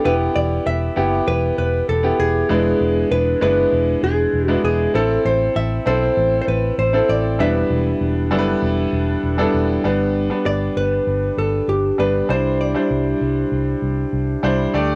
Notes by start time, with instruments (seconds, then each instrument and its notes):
0.04 fingered electric bass E1, grand piano B3 E4 G4, hollow-body jazz guitar B4
0.36 fingered electric bass E1, hollow-body jazz guitar D5
0.66 fingered electric bass E1, hollow-body jazz guitar E5
0.96 fingered electric bass F#1, grand piano B3 E4 G4
1.27 fingered electric bass E1, hollow-body jazz guitar B4
1.58 fingered electric bass E1, hollow-body jazz guitar B4
1.89 fingered electric bass E1, hollow-body jazz guitar A4
2.03 grand piano B3 E4 G4
2.19 fingered electric bass E1, hollow-body jazz guitar G#4
2.49 fingered electric bass E1, grand piano G#3 B3 D4 E4 B4
2.81 fingered electric bass E1
3.11 fingered electric bass E1, hollow-body jazz guitar B4
3.41 fingered electric bass F#1, grand piano G#3 B3 D4 E4 B4, hollow-body jazz guitar B4
3.72 fingered electric bass E1
4.03 fingered electric bass E1, hollow-body jazz guitar G#4
4.33 fingered electric bass E1
4.48 grand piano G#3 B3 D4 E4 B4, hollow-body jazz guitar F#4
4.64 fingered electric bass E1, hollow-body jazz guitar G#4
4.94 fingered electric bass A1, grand piano C4 E4 A4, hollow-body jazz guitar A4
5.25 fingered electric bass A1, hollow-body jazz guitar C5
5.56 fingered electric bass A1, hollow-body jazz guitar E5
5.86 fingered electric bass B1, grand piano C4 E4 A4, hollow-body jazz guitar C5
6.17 fingered electric bass A1
6.42 hollow-body jazz guitar C5
6.48 fingered electric bass A1, hollow-body jazz guitar B4
6.78 fingered electric bass A1, hollow-body jazz guitar C5
6.93 grand piano C4 E4 A4
7.09 fingered electric bass A1, hollow-body jazz guitar D5
7.39 fingered electric bass E1, grand piano G3 B3 D4 E4 B4, hollow-body jazz guitar E5
7.70 fingered electric bass E1
8.01 fingered electric bass E1
8.31 fingered electric bass F#1, grand piano G3 B3 D4 E4 A4
8.38 grand piano B4
8.62 fingered electric bass E1
8.93 fingered electric bass E1
9.23 fingered electric bass E1
9.38 grand piano G3 B3 D4 E4 A4
9.54 fingered electric bass E1
9.84 fingered electric bass G1, grand piano G3 B3 D4 B4
10.30 grand piano G3 B3 D4 B4
10.46 fingered electric bass G1, hollow-body jazz guitar D5
10.76 fingered electric bass G1, hollow-body jazz guitar B4
11.07 fingered electric bass G1
11.38 fingered electric bass G1, hollow-body jazz guitar A4
11.68 fingered electric bass G1, hollow-body jazz guitar G4
11.98 fingered electric bass G1, grand piano G3 B3 D4 B4, hollow-body jazz guitar B4
12.29 fingered electric bass C2, grand piano G3 D4 E4 C5, hollow-body jazz guitar C5
12.61 hollow-body jazz guitar D5
12.75 grand piano G3 D4 E4 C5
12.91 fingered electric bass C2
13.21 fingered electric bass C2
13.52 fingered electric bass C2
13.82 fingered electric bass C2
14.13 fingered electric bass C2
14.43 fingered electric bass C2, grand piano G3 D4 E4 C5
14.73 fingered electric bass D2, grand piano A3 D4 G4 D5